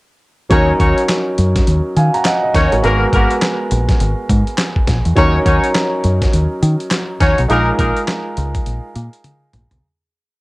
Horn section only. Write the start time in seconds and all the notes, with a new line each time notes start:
0.50 C#4 D#4 F#4 C#5
0.80 C#4 D#4 F#4 C#5
2.54 C#4 D#4 F#4 C#5
2.83 A#3 B3 F#4 A#4
3.12 A#3 B3 F#4 A#4
5.16 C#4 D#4 F#4 C#5
5.46 C#4 D#4 F#4 C#5
7.20 C#4 D#4 F#4 C#5
7.49 A#3 D#4 G#4 A#4
7.78 A#3 D#4 G#4 A#4